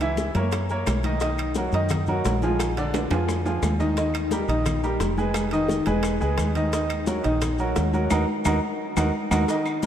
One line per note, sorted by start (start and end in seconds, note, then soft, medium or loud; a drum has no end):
0.00 0.29 C#2 medium
0.00 0.29 E3 medium
0.00 0.29 E4 medium
0.00 0.29 E5 medium
0.00 high bongo soft
0.00 high conga soft
0.00 high timbale medium
0.00 maracas soft
0.17 high bongo medium
0.17 high conga loud
0.17 maracas medium
0.35 0.83 F#2 medium
0.35 0.64 A#3 medium
0.35 0.64 A#4 medium
0.35 0.64 C#5 medium
0.35 high bongo soft
0.35 high conga loud
0.35 high timbale medium
0.35 maracas soft
0.52 high bongo medium
0.52 high conga soft
0.52 high timbale medium
0.52 claves medium
0.52 maracas medium
0.69 0.98 A#3 medium
0.69 0.98 A#4 medium
0.69 0.99 C#5 medium
0.69 high bongo soft
0.69 high conga soft
0.69 maracas soft
0.87 1.67 B1 medium
0.87 high bongo medium
0.87 low bongo medium
0.87 high conga medium
0.87 high timbale loud
0.87 low timbale medium
0.87 claves medium
0.87 maracas medium
1.03 1.18 D#3 medium
1.03 1.19 D#4 medium
1.03 1.19 D#5 medium
1.03 high conga medium
1.03 high timbale medium
1.03 maracas soft
1.20 1.50 D#3 medium
1.20 1.50 D#4 medium
1.20 1.50 D#5 medium
1.20 high bongo medium
1.20 high conga soft
1.20 high timbale medium
1.20 maracas medium
1.38 high conga soft
1.38 high timbale medium
1.38 claves medium
1.38 maracas soft
1.55 1.71 F#3 medium
1.55 1.71 F#4 medium
1.55 1.71 A#4 medium
1.55 high bongo medium
1.55 high conga loud
1.55 maracas medium
1.72 2.21 F#2 medium
1.72 2.02 D#3 medium
1.72 2.02 D#4 medium
1.72 2.02 D#5 medium
1.72 high conga soft
1.72 high timbale medium
1.72 maracas soft
1.89 high bongo medium
1.89 high conga soft
1.89 low conga medium
1.89 high timbale medium
1.89 claves medium
1.89 maracas medium
2.07 2.36 F#3 medium
2.07 2.36 F#4 medium
2.07 2.36 A#4 medium
2.07 high conga soft
2.07 low conga medium
2.07 maracas soft
2.25 3.05 A#1 medium
2.25 high bongo medium
2.25 low bongo medium
2.25 high conga medium
2.25 high timbale medium
2.25 low timbale medium
2.25 maracas medium
2.42 2.71 F3 medium
2.42 2.71 F4 medium
2.42 2.71 G#4 medium
2.42 high conga medium
2.42 maracas soft
2.59 high bongo medium
2.59 high conga soft
2.59 high timbale loud
2.59 claves medium
2.59 maracas medium
2.77 3.05 D3 medium
2.77 3.05 D4 medium
2.77 3.06 D5 medium
2.77 high bongo soft
2.77 high conga soft
2.77 high timbale medium
2.77 maracas soft
2.94 high bongo medium
2.94 high conga loud
2.94 high timbale medium
2.94 maracas medium
3.11 3.59 F2 medium
3.11 3.40 F3 medium
3.11 3.40 F4 medium
3.11 3.40 G#4 medium
3.11 high bongo soft
3.11 high conga loud
3.11 high timbale medium
3.11 maracas soft
3.28 high bongo medium
3.28 high conga soft
3.28 low timbale medium
3.28 claves medium
3.28 maracas medium
3.45 3.74 F3 medium
3.45 3.74 F4 medium
3.45 3.74 G#4 medium
3.45 high bongo soft
3.45 high conga soft
3.45 low timbale medium
3.45 maracas soft
3.63 4.43 D#2 medium
3.63 high bongo medium
3.63 low bongo medium
3.63 high conga medium
3.63 low timbale medium
3.63 claves medium
3.63 maracas medium
3.80 3.94 D#3 medium
3.80 3.94 D#4 medium
3.80 3.94 D#5 medium
3.80 high conga medium
3.80 low timbale medium
3.80 maracas soft
3.97 4.25 D#3 medium
3.97 4.25 D#4 medium
3.97 4.26 D#5 medium
3.97 high bongo medium
3.97 high conga soft
3.97 high timbale medium
3.97 maracas medium
4.14 high conga soft
4.14 high timbale medium
4.14 claves medium
4.14 maracas soft
4.31 4.46 G3 medium
4.31 4.46 G4 medium
4.31 4.46 A#4 medium
4.31 high bongo medium
4.31 high conga loud
4.31 maracas medium
4.48 4.97 A#1 medium
4.48 4.77 D#3 medium
4.48 4.77 D#4 medium
4.48 4.77 D#5 medium
4.48 high conga soft
4.48 high timbale medium
4.48 maracas soft
4.66 high bongo medium
4.66 high conga soft
4.66 low conga medium
4.66 high timbale medium
4.66 claves medium
4.66 maracas medium
4.83 5.12 G3 medium
4.83 5.12 G4 medium
4.83 5.12 A#4 medium
4.83 high conga soft
4.83 maracas soft
5.00 5.81 F1 medium
5.00 high bongo medium
5.00 low bongo medium
5.00 high conga medium
5.00 high timbale medium
5.00 maracas medium
5.17 5.46 G#3 medium
5.17 5.46 G#4 medium
5.17 5.46 B4 medium
5.17 high conga medium
5.17 maracas soft
5.34 high bongo medium
5.34 high conga soft
5.34 high timbale loud
5.34 claves medium
5.34 maracas medium
5.51 5.81 D#3 medium
5.51 5.81 D#4 loud
5.51 5.81 D#5 medium
5.51 high bongo soft
5.51 high conga soft
5.51 high timbale medium
5.51 maracas soft
5.68 high bongo medium
5.68 high conga loud
5.68 maracas medium
5.86 6.19 E1 medium
5.86 6.15 G#3 medium
5.86 6.15 G#4 medium
5.86 6.15 B4 medium
5.86 high bongo soft
5.86 high conga loud
5.86 high timbale medium
5.86 maracas soft
6.03 high bongo medium
6.03 high conga soft
6.03 high timbale medium
6.03 claves medium
6.03 maracas medium
6.20 6.38 C#2 medium
6.20 6.49 G#3 medium
6.20 6.49 G#4 medium
6.20 6.49 B4 medium
6.20 high bongo soft
6.20 high conga soft
6.20 maracas soft
6.37 7.19 D#2 medium
6.37 high bongo medium
6.37 low bongo medium
6.37 high conga medium
6.37 high timbale medium
6.37 claves medium
6.37 maracas medium
6.55 6.70 D#3 medium
6.55 6.70 D#4 medium
6.55 6.70 D#5 medium
6.55 high conga medium
6.55 high timbale medium
6.55 maracas soft
6.73 7.01 D#3 medium
6.73 7.01 D#4 medium
6.73 7.02 D#5 medium
6.73 high bongo medium
6.73 high conga soft
6.73 high timbale medium
6.73 maracas medium
6.90 high conga soft
6.90 high timbale medium
6.90 claves medium
6.90 maracas soft
7.07 7.21 F#3 medium
7.07 7.21 F#4 medium
7.07 7.22 A#4 medium
7.07 high bongo medium
7.07 high conga loud
7.07 maracas medium
7.23 7.73 A#1 medium
7.23 7.52 D#3 medium
7.23 7.53 D#4 medium
7.23 7.53 D#5 medium
7.23 high conga soft
7.23 high timbale medium
7.23 maracas soft
7.41 high bongo medium
7.41 high conga soft
7.41 low conga medium
7.41 high timbale medium
7.41 claves medium
7.41 maracas medium
7.58 7.88 F#3 medium
7.58 7.88 F#4 medium
7.58 7.88 A#4 medium
7.58 high conga soft
7.58 maracas soft
7.76 8.09 D#2 medium
7.76 high bongo medium
7.76 low bongo medium
7.76 high conga medium
7.76 high timbale medium
7.76 low timbale medium
7.76 maracas medium
7.93 8.07 F#3 medium
7.93 8.08 F#4 medium
7.93 8.08 A#4 medium
7.93 high conga medium
7.93 maracas soft
8.10 8.24 D#2 loud
8.10 8.22 D#4 loud
8.10 8.22 F#4 loud
8.10 8.22 A#4 loud
8.10 low bongo medium
8.10 high conga loud
8.10 high timbale loud
8.10 claves loud
8.10 maracas medium
8.45 8.58 D#2 medium
8.45 8.57 D#4 loud
8.45 8.57 F#4 medium
8.45 8.57 A#4 medium
8.45 low bongo medium
8.45 high conga loud
8.45 high timbale loud
8.45 claves loud
8.45 maracas loud
8.97 9.10 D#2 loud
8.97 9.08 D#4 medium
8.97 9.08 F#4 loud
8.97 9.08 A#4 loud
8.97 low bongo loud
8.97 high conga medium
8.97 high timbale loud
8.97 claves loud
8.97 maracas loud
9.31 9.44 D#2 loud
9.31 9.42 D#4 loud
9.31 9.42 F#4 loud
9.31 9.42 A#4 loud
9.31 low bongo loud
9.31 high conga loud
9.31 high timbale medium
9.31 claves medium
9.31 maracas loud
9.48 9.77 D#3 medium
9.48 9.77 D#4 medium
9.48 9.77 D#5 medium
9.48 cowbell loud
9.48 high conga soft
9.48 low agogo medium
9.48 maracas medium
9.65 high conga soft
9.65 low agogo loud
9.65 claves medium
9.65 maracas soft
9.83 cowbell medium
9.83 high conga loud
9.83 maracas medium